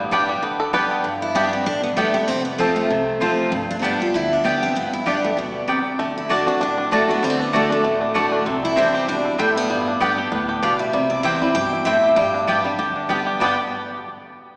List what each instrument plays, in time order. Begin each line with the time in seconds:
Already playing: upright bass G1, steel-string acoustic guitar G2, five-string banjo B3 G4
0.00 five-string banjo G3
0.11 steel-string acoustic guitar G3 B3 D4 G4, mandolin B3 G4 D5 G5, five-string banjo D4
0.29 five-string banjo G3
0.43 upright bass D2, steel-string acoustic guitar D3, five-string banjo B3
0.60 five-string banjo A4
0.73 steel-string acoustic guitar G3 B3 D4 G4, mandolin B3 G4 D5 G5, five-string banjo B4
0.91 five-string banjo B3
1.04 upright bass G1, steel-string acoustic guitar G2
1.22 steel-string acoustic guitar E4
1.35 steel-string acoustic guitar G3 B3 D4 G4, mandolin B3 G4 D5 G5
1.53 steel-string acoustic guitar C4
1.66 upright bass A1, steel-string acoustic guitar D3 D4
1.83 steel-string acoustic guitar B3
1.97 upright bass G1, steel-string acoustic guitar G3 A3 B3 D4 G4, mandolin B3 G4 D5 G5
2.14 steel-string acoustic guitar B3 D4 G4
2.28 upright bass F1, steel-string acoustic guitar F2 C4
2.45 steel-string acoustic guitar B3
2.58 steel-string acoustic guitar F3 A3 C4 F4, mandolin C4 F4 C5 A5
2.76 steel-string acoustic guitar A3
2.90 upright bass C2, steel-string acoustic guitar C3
3.20 steel-string acoustic guitar F3 A3 C4 F4, mandolin C4 F4 C5 A5
3.52 upright bass G1, steel-string acoustic guitar G2
3.71 steel-string acoustic guitar D4
3.79 steel-string acoustic guitar G3 B3 C4 D4, mandolin B3 G4 D5
3.83 steel-string acoustic guitar D4 G4, mandolin G5
4.00 steel-string acoustic guitar D4 F4 G4
4.14 upright bass D2, steel-string acoustic guitar D3 E4
4.33 steel-string acoustic guitar D4
4.44 steel-string acoustic guitar G3 B3 D4 G4, mandolin B3 G4 D5 G5
4.63 steel-string acoustic guitar C4
4.75 upright bass G1, steel-string acoustic guitar G2 B3
4.93 steel-string acoustic guitar E4
5.06 steel-string acoustic guitar G3 B3 D4 G4, mandolin B3 G4 D5 G5
5.24 steel-string acoustic guitar A3
5.37 upright bass D2, steel-string acoustic guitar B2 B3
5.68 steel-string acoustic guitar C3, mandolin B3 G4 D5 G5
5.99 upright bass D2, steel-string acoustic guitar D3, five-string banjo A3
6.18 steel-string acoustic guitar E4
6.29 steel-string acoustic guitar D3 A3 D4 F#4, mandolin A3 F#4 D5 A5, five-string banjo D4
6.47 steel-string acoustic guitar C4 D4 F#4, five-string banjo D4
6.61 upright bass A1, steel-string acoustic guitar A2 D4, five-string banjo D4
6.78 five-string banjo D4
6.91 steel-string acoustic guitar D3 A3 D4 F#4, mandolin A3 F#4 D5 A5, five-string banjo D4
7.09 five-string banjo A3, steel-string acoustic guitar B3 D4 F#4
7.22 upright bass D2, steel-string acoustic guitar D3 C4, five-string banjo G3
7.30 five-string banjo A3
7.40 steel-string acoustic guitar B3, five-string banjo D4
7.53 steel-string acoustic guitar D3 A3 D4 F#4, mandolin A3 F#4 D5 A5, five-string banjo D4
7.70 steel-string acoustic guitar A3, five-string banjo D4
7.84 upright bass A1, steel-string acoustic guitar A2, five-string banjo A3
8.01 five-string banjo D4
8.14 steel-string acoustic guitar D3 A3 D4 F#4, mandolin A3 F#4 D5 A5, five-string banjo A3
8.32 five-string banjo D4
8.46 upright bass C2, steel-string acoustic guitar C3, five-string banjo C4
8.63 five-string banjo E4, steel-string acoustic guitar E4
8.76 steel-string acoustic guitar E3 G3 C4 D4 E4, five-string banjo G3, mandolin C4 E4 C5 G5
8.94 steel-string acoustic guitar C4, five-string banjo G4
9.08 upright bass G1, steel-string acoustic guitar B2 D4, five-string banjo G3
9.25 five-string banjo E4
9.38 steel-string acoustic guitar A2 A3, five-string banjo G3, mandolin C4 E4 C5 G5
9.56 steel-string acoustic guitar B3, five-string banjo E4
9.70 upright bass G1, steel-string acoustic guitar G2, five-string banjo G3
9.87 five-string banjo D4
10.00 steel-string acoustic guitar G3 B3 D4 G4, mandolin B3 G4 D5 G5, five-string banjo B3
10.17 steel-string acoustic guitar D4 G4, five-string banjo G4
10.32 upright bass D2, steel-string acoustic guitar A2, five-string banjo B3
10.49 five-string banjo G4
10.62 steel-string acoustic guitar B2 F5, mandolin B3 G4 D5 G5, five-string banjo D4
10.79 five-string banjo G3, steel-string acoustic guitar E5
10.93 upright bass C2, steel-string acoustic guitar C3, five-string banjo G3
11.10 five-string banjo E4, steel-string acoustic guitar D5
11.23 steel-string acoustic guitar E3 G3 C4 E4 E5, mandolin C4 E4 C5 G5, five-string banjo G4
11.42 five-string banjo G3, steel-string acoustic guitar C4 E4
11.55 upright bass G2, steel-string acoustic guitar B2 G5, five-string banjo G4
11.73 five-string banjo E4
11.85 steel-string acoustic guitar A2 E5, mandolin C4 E4 C5 G5, five-string banjo C4
12.04 five-string banjo G4
12.16 upright bass G1, steel-string acoustic guitar G2 G5, five-string banjo G3
12.34 five-string banjo D4
12.47 steel-string acoustic guitar G3 B3 D4 G4, mandolin B3 G4 D5 G5, five-string banjo G4
12.64 five-string banjo G3, steel-string acoustic guitar D4 G4
12.79 upright bass D2, steel-string acoustic guitar D3, five-string banjo G4
12.96 five-string banjo D4
13.09 steel-string acoustic guitar G3 B3 D4 G4, mandolin B3 G4 D5 G5, five-string banjo B3
13.27 five-string banjo G4
13.40 upright bass G1, steel-string acoustic guitar G2 D3 G3 B3 D4 G4 G5, five-string banjo G3 B3 D4, mandolin B3 G4 D5 G5
13.46 five-string banjo G4